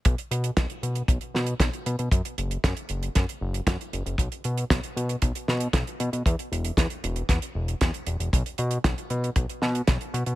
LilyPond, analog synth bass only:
\new Staff \with { instrumentName = "Analog synth bass" } { \clef bass \time 4/4 \key fis \mixolydian \tempo 4 = 116 b,,16 r16 b,8 b,,16 r16 b,8 b,,16 r16 b,8 b,,16 r16 b,16 b,16 | fis,16 r16 fis,,8 fis,16 r16 fis,,8 fis,16 r16 fis,,8 fis,16 r16 fis,,16 fis,,16 | b,,16 r16 b,8 b,,16 r16 b,8 b,,16 r16 b,8 b,,16 r16 b,16 b,16 | e,16 r16 e,,8 e,16 r16 e,,8 e,16 r16 e,,8 e,16 r16 e,,16 e,,16 |
b,,16 r16 b,8 b,,16 r16 b,8 b,,16 r16 b,8 b,,16 r16 b,16 b,16 | }